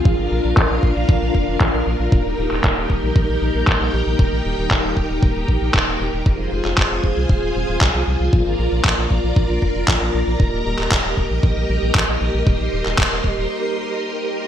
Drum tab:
CP |----x-------x---|---xx-------x---|----x-------x---|---xx-------x---|
BD |o---o-o-o-o-o---|o---o-o-o---o---|o---o-o-o-o-o---|o---o-o-o---o---|

CP |----x-------x---|---xx-------x---|---xx-----------|
BD |o---o-o-o-o-o---|o---o-o-o---o---|o---o-o---------|